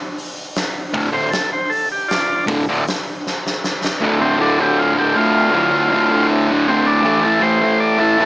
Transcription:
0.18 open hi-hat
0.55 snare, open hi-hat
0.93 D2 A2 D3, kick, open hi-hat
1.11 D2 A2 D3 C5
1.31 A4, snare, open hi-hat
1.53 C5
1.70 A4, open hi-hat
1.92 G4
2.08 F4 D5, snare, open hi-hat
2.46 D2 A2 D3, kick, open hi-hat
2.68 D2 A2 D3
2.87 snare, open hi-hat
3.27 snare
3.47 snare
3.64 snare
3.85 snare
4.01 D2 A2
4.05 D3
4.19 D3 C4
4.24 A2
4.37 D2 A2
4.41 D3 D4
4.58 A2 D3 G4
4.79 F4
4.95 D3
4.99 A2 G4
5.15 D2 A2 D3 F4
5.51 D2 A2 D3
5.71 A2 D3
5.90 D2 A2
5.95 D3
6.11 D3
6.15 A2
6.48 A2 D3
6.67 D2 A2 C4
6.71 D3
6.86 D4
7.01 A2 E3 A3
7.22 A3 A4
7.26 E3
7.40 A2 E3 A3 C5
7.60 E3 A3
7.80 D5
7.98 E3 A3 A4
8.18 A2 E3 A3

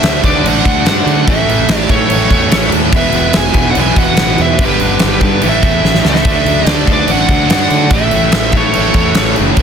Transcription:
Already playing: D3 A3 D4 C5 E5
0.02 D2 D3 A3 D4 F#4, snare, crash
0.23 D2 D3 A3 D4 F#4 B4 D5, kick, crash
0.44 A1 D3 A3 D4 F#4 F#5, crash
0.49 D5
0.65 D2 D3 A3 D4 F#4, kick, crash
0.85 G2 D3 A3 D4 F#4 F#5, snare, crash
0.90 D5
1.05 D3 A3 D4 F#4, crash
1.26 A1 A2 E3 A3 C#4 E4 E5, kick, crash
1.30 A3 A4
1.46 A1 A2 E3 A3 C#4 E4, crash
1.67 A1 A2 E3 A3 C#4 E4, snare, crash
1.74 G4 D5
1.88 A2 E3 A3 C#4 E4 C#5, kick, crash
1.93 A2 A4
2.09 A1 A2 E3 A3 C#4 E4, crash
2.29 E2 A2 E3 A3 C#4 E4, kick, crash
2.50 A1 A2 E3 A3 C#4 E4, snare, crash
2.70 D#2 A2 E3 A3 C#4 E4, crash
2.91 E1 E2 B2 E3 G#3 B3 E4, kick, crash
2.96 E3 B4 E5
3.12 E1 E3 G#3 B3 E4, crash
3.33 E1 E3 G#3 B3 E4 G#5, snare, crash
3.40 E5
3.54 E1 E2 B2 E3 G#3 B3 E4, kick, crash
3.71 E2 D5 F#5
3.75 B1 B2 E3 G#3 B3 E4, crash
3.80 E5 G#5
3.96 E1 E3 G#3 B3 E4 F#5, kick, crash
4.03 B4
4.16 A1 E2 B2 E3 G#3 B3 E4, snare, crash
4.37 E2 E3 G#3 B3 E4 E5, crash
4.46 B4
4.59 G1 G2 D3 G3 B3 D4, kick, crash
4.65 G4 B4
4.80 G1 G2 D3 G3 B3 D4, crash
4.99 G1 G2 D3 G3 B3 D4, snare, crash
5.07 G4 B4
5.21 G2 D3 G3 B3 D4, kick, crash
5.41 A1 A2 E3 A3 C#4 E4, crash
5.48 A4 E5
5.62 E2 A2 E3 A3 C#4 E4, kick, crash
5.83 A1 A2 E3 A3 C#4 E4, snare
5.94 snare
6.02 C#2 A2 E3 A3 C#4 E4, snare
6.09 A4 E5
6.15 snare
6.25 D2 D3 A3 D4 F#4, kick, crash
6.30 D4
6.45 D2 D3 A3 D4 F#4, crash
6.65 D2 D3 A3 D4 F#4 G4 D5, snare, crash
6.87 D2 D3 A3 D4 F#4, kick, crash
6.92 B4 D5
7.08 A1 D3 A3 D4 F#4 D5 F#5, crash
7.29 D2 D3 A3 D4 F#4, kick, crash
7.50 G2 D3 A3 D4 F#4 F#5, snare, crash
7.54 D5
7.70 D3 A3 D4 F#4, crash
7.90 A1 A2 E3 A3 C#4 E4 E5, kick, crash
7.95 A4
8.11 A1 A2 E3 A3 C#4 E4, crash
8.32 A1 A2 E3 A3 C#4 E4, snare, crash
8.52 A2 E3 A3 C#4 E4, kick, crash
8.57 A4 C#5
8.74 A1 A2 E3 A3 C#4 E4, crash
8.94 E2 A2 E3 A3 C#4 E4, kick, crash
9.14 A1 A2 E3 A3 C#4 E4, snare, crash
9.36 F#1 A2 E3 A3 C#4 E4, crash
9.57 E1 E2 E3 G#3 B3, kick, crash

